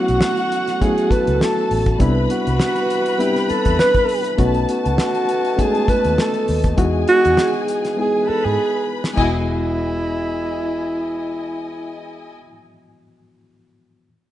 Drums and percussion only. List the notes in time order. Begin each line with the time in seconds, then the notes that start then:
0.08 closed hi-hat
0.21 snare
0.37 closed hi-hat
0.52 closed hi-hat
0.68 snare, closed hi-hat
0.81 kick, closed hi-hat
0.98 closed hi-hat
1.11 kick, closed hi-hat
1.27 closed hi-hat
1.41 snare
1.71 open hi-hat
1.86 kick, closed hi-hat
2.00 kick, closed hi-hat
2.30 closed hi-hat
2.47 closed hi-hat
2.60 snare
2.76 closed hi-hat
2.90 closed hi-hat
3.06 closed hi-hat
3.20 closed hi-hat
3.36 snare, closed hi-hat
3.49 closed hi-hat
3.65 kick, closed hi-hat
3.79 snare
3.94 kick, closed hi-hat
4.09 open hi-hat
4.24 closed hi-hat
4.38 kick, closed hi-hat
4.54 closed hi-hat
4.69 closed hi-hat
4.86 closed hi-hat
4.98 snare
5.15 closed hi-hat
5.29 closed hi-hat
5.45 closed hi-hat
5.59 kick, closed hi-hat
5.75 closed hi-hat
5.88 kick, closed hi-hat
6.04 closed hi-hat
6.18 snare
6.34 closed hi-hat
6.48 open hi-hat
6.64 kick, closed hi-hat
6.78 kick, closed hi-hat
7.08 closed hi-hat
7.25 closed hi-hat
7.37 snare
7.68 closed hi-hat
7.85 snare, closed hi-hat
9.04 snare
9.17 kick, crash